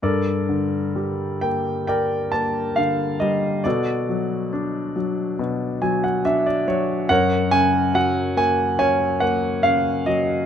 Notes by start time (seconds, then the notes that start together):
0.03 G2 A4 A#4 D5
0.49 D3
0.96 G3
1.41 A#3 G5
1.87 A#4 D5 G5
2.32 A#3 A5
2.76 D3 F5
3.20 G3 D#5
3.64 B2 F#4 A4 D5
4.09 F#3
4.53 D4
4.96 F#3
5.39 B2
5.82 F#3 G#5
6.04 F#5
6.25 D4 E5
6.46 D5
6.68 F#3 C#5
7.09 F#2 A#4 C#5 F#5
7.51 C#3 G#5
7.94 F#3 F#5
8.36 A#3 G#5
8.79 C#4 C#5 G#5
9.20 A#3 F#5
9.63 C#3 F5
10.06 F#3 D#5